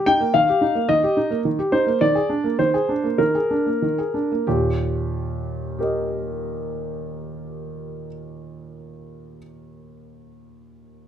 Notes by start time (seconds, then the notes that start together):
0.06 D#4 G5
0.20 A#3
0.34 D#3 F5
0.49 G4
0.61 D#4
0.75 A#3
0.89 D#3 D#5
1.03 G4
1.17 D#4
1.30 A#3
1.45 D#3
1.59 G4
1.72 D#4 C5
1.86 A#3
2.01 D#3 D5
2.15 G#4
2.29 D4
2.44 A#3
2.59 D#3 C5
2.74 G#4
2.89 D4
3.04 A#3
3.18 D#3 A#4
3.35 G#4
3.51 D4
3.66 A#3
3.82 D#3
3.98 G#4
4.14 D4
4.32 A#3
4.47 D#2 A#2 G4
5.79 G4 A#4
5.83 D#5